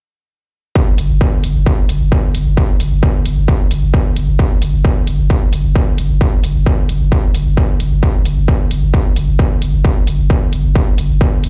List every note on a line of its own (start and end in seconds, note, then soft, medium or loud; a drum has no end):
0.75 kick loud
0.87 0.98 G1 medium
0.98 1.09 G1 medium
0.98 open hi-hat loud
1.10 1.21 G1 medium
1.21 kick loud
1.44 1.55 G1 loud
1.44 open hi-hat loud
1.55 1.66 G1 medium
1.66 kick loud
1.78 1.89 G1 medium
1.89 2.00 G1 loud
1.89 open hi-hat loud
2.01 2.12 G1 medium
2.12 kick loud
2.35 2.46 G1 loud
2.35 open hi-hat loud
2.46 2.57 G1 medium
2.57 kick loud
2.69 2.79 G1 medium
2.80 2.91 G1 medium
2.80 open hi-hat loud
2.92 3.03 G1 medium
3.03 kick loud
3.25 3.37 G1 medium
3.25 open hi-hat loud
3.37 3.48 G1 medium
3.48 kick loud
3.60 3.70 G1 medium
3.71 3.82 G1 loud
3.71 open hi-hat loud
3.83 3.93 G1 medium
3.94 kick loud
4.16 4.28 G1 loud
4.16 open hi-hat loud
4.28 4.39 G1 medium
4.39 kick loud
4.51 4.61 G1 medium
4.62 4.73 G1 medium
4.62 open hi-hat loud
4.74 4.84 G1 medium
4.85 kick loud
5.07 5.18 G1 medium
5.07 open hi-hat loud
5.19 5.30 G1 medium
5.30 kick loud
5.42 5.52 G1 medium
5.53 5.64 G1 loud
5.53 open hi-hat loud
5.64 5.75 G1 medium
5.75 kick loud
5.98 6.09 G1 loud
5.98 open hi-hat loud
6.10 6.21 G1 medium
6.21 kick loud
6.33 6.43 G1 medium
6.44 6.55 G1 loud
6.44 open hi-hat loud
6.55 6.66 G1 medium
6.66 kick loud
6.89 7.00 G1 medium
6.89 open hi-hat loud
7.01 7.12 G1 medium
7.12 kick loud
7.24 7.34 G1 medium
7.35 7.46 G1 loud
7.35 open hi-hat loud
7.46 7.57 G1 medium
7.57 kick loud
7.80 7.91 G1 loud
7.80 open hi-hat loud
7.92 8.03 G1 medium
8.03 kick loud
8.14 8.25 G1 medium
8.25 8.37 G1 loud
8.25 open hi-hat medium
8.37 8.48 G1 medium
8.48 kick loud
8.71 8.82 G1 medium
8.71 open hi-hat loud
8.83 8.93 G1 medium
8.94 kick loud
9.05 9.16 G1 medium
9.16 9.28 G1 loud
9.16 open hi-hat loud
9.28 9.39 G1 medium
9.39 kick loud
9.62 9.73 G1 loud
9.62 open hi-hat loud
9.74 9.84 G1 medium
9.85 kick loud
9.96 10.07 G1 medium
10.07 10.18 G1 medium
10.07 open hi-hat medium
10.19 10.30 G1 medium
10.30 kick loud
10.53 10.64 G1 medium
10.53 open hi-hat loud
10.65 10.75 G1 medium
10.75 kick loud
10.87 10.98 G1 medium
10.98 11.09 G1 loud
10.98 open hi-hat loud
11.10 11.21 G1 medium
11.21 kick loud
11.44 11.49 G1 loud
11.44 open hi-hat loud